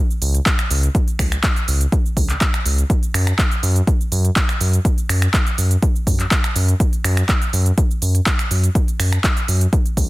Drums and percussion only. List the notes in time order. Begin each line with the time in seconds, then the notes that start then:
0.11 shaker
0.22 open hi-hat, shaker
0.34 closed hi-hat, shaker
0.46 kick, clap, closed hi-hat, shaker
0.59 finger snap, closed hi-hat, shaker
0.71 open hi-hat, shaker
0.83 closed hi-hat, shaker
0.95 kick, closed hi-hat, shaker
1.08 closed hi-hat, shaker
1.19 finger snap, kick, open hi-hat, shaker
1.32 finger snap, closed hi-hat, shaker
1.44 kick, clap, closed hi-hat, shaker
1.56 closed hi-hat, shaker
1.68 open hi-hat, shaker
1.81 closed hi-hat, shaker
1.92 kick, closed hi-hat, shaker
2.06 shaker
2.17 kick, open hi-hat, shaker
2.29 clap, closed hi-hat, shaker
2.41 kick, clap, closed hi-hat, shaker
2.54 finger snap, closed hi-hat, shaker
2.66 open hi-hat, shaker
2.78 closed hi-hat, shaker
2.90 kick, closed hi-hat, shaker
3.03 closed hi-hat, shaker
3.14 finger snap, open hi-hat, shaker
3.27 finger snap, shaker
3.39 kick, clap, closed hi-hat, shaker
3.51 closed hi-hat, shaker
3.63 open hi-hat, shaker
3.76 closed hi-hat, shaker
3.87 kick, closed hi-hat, shaker
4.01 shaker
4.12 open hi-hat, shaker
4.25 closed hi-hat, shaker
4.36 kick, clap, closed hi-hat, shaker
4.49 finger snap, closed hi-hat, shaker
4.61 open hi-hat, shaker
4.73 closed hi-hat, shaker
4.85 kick, closed hi-hat, shaker
4.98 closed hi-hat, shaker
5.09 finger snap, open hi-hat, shaker
5.22 finger snap, closed hi-hat, shaker
5.34 kick, clap, closed hi-hat, shaker
5.47 closed hi-hat, shaker
5.58 open hi-hat, shaker
5.71 closed hi-hat, shaker
5.83 kick, closed hi-hat, shaker
5.96 shaker
6.07 kick, open hi-hat, shaker
6.20 clap, closed hi-hat, shaker
6.31 kick, clap, closed hi-hat, shaker
6.44 finger snap, closed hi-hat, shaker
6.56 open hi-hat, shaker
6.68 closed hi-hat, shaker
6.80 kick, closed hi-hat, shaker
6.93 closed hi-hat, shaker
7.04 finger snap, open hi-hat, shaker
7.17 finger snap, closed hi-hat, shaker
7.29 kick, clap, closed hi-hat, shaker
7.42 closed hi-hat, shaker
7.53 open hi-hat, shaker
7.66 closed hi-hat, shaker
7.78 kick, closed hi-hat, shaker
7.91 shaker
8.02 open hi-hat, shaker
8.15 closed hi-hat, shaker
8.26 kick, clap, closed hi-hat, shaker
8.39 finger snap, closed hi-hat, shaker
8.51 open hi-hat, shaker
8.64 closed hi-hat, shaker
8.75 kick, closed hi-hat, shaker
8.88 closed hi-hat, shaker
9.00 finger snap, open hi-hat, shaker
9.13 finger snap, closed hi-hat, shaker
9.24 kick, clap, closed hi-hat, shaker
9.37 closed hi-hat, shaker
9.48 open hi-hat, shaker
9.61 closed hi-hat, shaker
9.73 kick, closed hi-hat, shaker
9.86 closed hi-hat, shaker
9.97 kick, open hi-hat, shaker